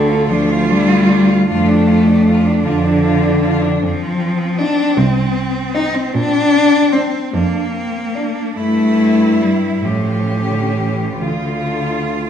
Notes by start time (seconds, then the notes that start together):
Already playing: D2 D3 D4 A4
0.09 F4
0.29 D2 F3 D4 F4
0.50 F4
0.69 G3 D4
0.89 F4
1.09 D4
1.30 F4
1.48 F2 A3 D4 F4
1.68 D4
1.87 F4
2.07 D4
2.27 F4
2.46 D4
2.64 F2 D3 F4
2.85 D4
3.04 F4
3.24 D4
3.44 F4
3.63 D4
3.82 F2 F3 C4
4.58 D4 D#4
4.97 C2 C4
5.74 D#4
5.95 C4
6.13 A#2 D4
6.93 C4 D4
7.34 F2 A#3 D4
7.74 C4
8.15 D4
8.56 G2 A3 E4
9.41 G3
9.83 A2 F3 C#4 G4
10.51 D3
10.73 E3
11.20 D2 D3 F4